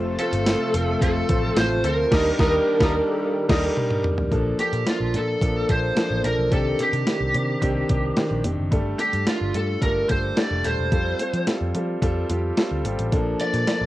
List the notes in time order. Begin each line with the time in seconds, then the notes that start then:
Already playing: F1 C3 F3 A3 C4 F4 A4 C5
0.18 A3 C4 F4 A4 C5, closed hi-hat
0.33 G1, closed hi-hat
0.46 A3 C4 F4 C5, snare, closed hi-hat, tambourine
0.74 F1 A3 C4 F4 C5, closed hi-hat
1.01 F1 A3 C4 F4 A4 C5, kick, closed hi-hat
1.29 A1 A3 C4 F4 C5, kick, closed hi-hat
1.56 A1 A3 C4 F4 C5, snare, closed hi-hat, tambourine
1.84 D2 A3 C4 F4 A#4 C5, closed hi-hat
2.11 D#2 D#3 G3 A#3 D4 D#4 G4 A#4, kick, snare, crash
2.38 D#2 G3 D4 D#4 A#4, kick, snare
2.80 D#2 G3 D4 D#4 A#4, kick, snare
3.06 A4
3.49 D#2 G3 D4 D#4 A#4, kick, snare, crash
3.77 high tom
3.90 mid tom
4.04 mid tom
4.18 floor tom
4.31 A#1 F3 A#3 D4 A4, kick, closed hi-hat
4.59 F3 A#3 D4 G4 A4, closed hi-hat
4.73 A#2, closed hi-hat
4.86 F3 A#3 D4 F4 A4, snare, closed hi-hat
5.00 A#1
5.13 A#2 F3 A#3 D4 A4, closed hi-hat
5.41 A#1 F3 A#3 D4 A4, kick, closed hi-hat
5.68 A#1 F3 A#3 D4 A4 C5, kick, closed hi-hat
5.96 F3 A#3 D4 A4, snare, closed hi-hat
6.10 A1
6.23 A#1 F3 A#3 D4 A4 A#4, closed hi-hat
6.38 B1
6.51 C2 D#3 C4 D4 G4 A4, kick, closed hi-hat
6.79 D#3 C4 D4 G4, closed hi-hat
6.93 C3, closed hi-hat
7.06 D#3 C4 D4 G4, snare, closed hi-hat
7.20 C2
7.34 C3 D#3 C4 D4 G4, closed hi-hat
7.61 C2 D#3 C4 D4 G4, kick, closed hi-hat
7.89 C2 D#3 C4 D4 G4, kick, closed hi-hat
8.17 D#3 C4 D4 G4, snare, closed hi-hat
8.31 A#1
8.44 F1 D#3 C4 D4 G4, closed hi-hat
8.58 F#1
8.71 G1 G3 A3 D4 A4, kick, closed hi-hat
8.99 G3 A3 D4 G4 A4, closed hi-hat
9.14 G2, closed hi-hat
9.26 G3 A3 D4 F4, snare, closed hi-hat
9.41 G1
9.54 G2 G3 A3 D4 A4, closed hi-hat
9.82 G1 G3 A3 D4 A4 A#4, kick, closed hi-hat
10.09 G1 G3 A3 D4 A4 C5, kick, closed hi-hat
10.37 G3 A3 D4 A4 D5, snare, closed hi-hat
10.51 F1
10.64 D#1 G3 A3 D4 A4 C5, closed hi-hat
10.79 E1
10.92 F2 G3 C4 F4 A4, kick, closed hi-hat
11.19 G3 C4 F4 A4, closed hi-hat
11.34 F3, closed hi-hat
11.47 G3 C4 F4 A4, snare, closed hi-hat
11.61 F2
11.74 F3 G3 C4 F4 A4, closed hi-hat
12.02 F2 G3 C4 F4 A4, kick, closed hi-hat
12.29 F2 G3 C4 F4 G4, closed hi-hat
12.57 G3 C4 F4 A4, snare, closed hi-hat
12.71 D2
12.84 G#1 G3 C4 F4 G4, closed hi-hat
12.98 A1, closed hi-hat
13.12 A#1 F3 A#3 D4 A4, kick, closed hi-hat
13.39 F3 A#3 D4 A4 D5, closed hi-hat
13.53 A#2, closed hi-hat
13.67 F3 A#3 D4 A4 D5, snare, closed hi-hat
13.81 A#1